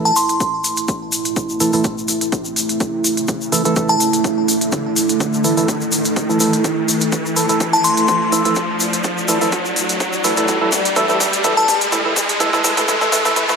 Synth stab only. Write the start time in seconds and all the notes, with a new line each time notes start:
Already playing: E3 A3 E4 A4
1.60 E3 A3 E4 A4
1.73 E3 A3 E4 A4
3.52 E3 A3 E4 A4
3.65 E3 A3 E4 A4
3.76 E3 A3 E4
5.44 E3 A3 E4 A4
5.57 E3 A3 E4 A4
6.29 E3 A3 E4 A4
6.40 E3 A3 E4 A4
7.36 E3 A3 E4 A4
7.49 E3 A3 E4 A4
8.32 E3 A3 E4 A4
8.45 E3 A3 E4 A4
9.28 E3 A3 E4 A4
9.41 E3 A3 E4 A4
10.24 E3 A3 E4 A4
10.37 E3 A3 E4 A4
10.48 E3 A3 E4 A4
10.61 E3 A3 E4 A4
10.96 E3 A3 E4 A4
11.09 E3 A3 E4 A4
11.44 E3 A3 E4 A4
11.57 E3 A3 E4 A4
11.92 E3 A3 E4 A4
12.05 E3 A3 E4 A4
12.40 E3 A3 E4 A4
12.53 E3 A3 E4 A4
12.64 E3 A3 E4 A4
12.77 E3 A3 E4 A4
12.88 E3 A3 E4 A4
13.01 E3 A3 E4 A4
13.12 E3 A3 E4 A4
13.25 E3 A3 E4 A4
13.36 E3 A3 E4 A4
13.49 E3 A3 E4 A4